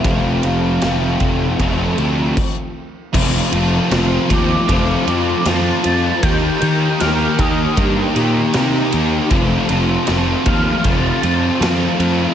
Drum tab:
CC |------x-|x-------|--------|--------|
RD |xxxxxx--|-xxxxxxx|xxxxxxxx|xxxxxxxx|
SD |--o-----|--o---o-|--o---o-|--o---o-|
BD |o--oo-o-|o--oo---|o--oo---|o--oo---|